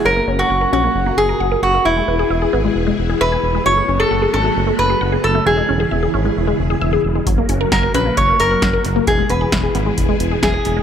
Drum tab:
HH |--------|--------|--------|--------|
SD |--------|--------|--------|--------|
BD |--------|--------|--------|--------|

HH |xxxxxxxx|xxxxxxxx|
SD |--o---o-|--o---o-|
BD |o-o-o-o-|o-o-o-o-|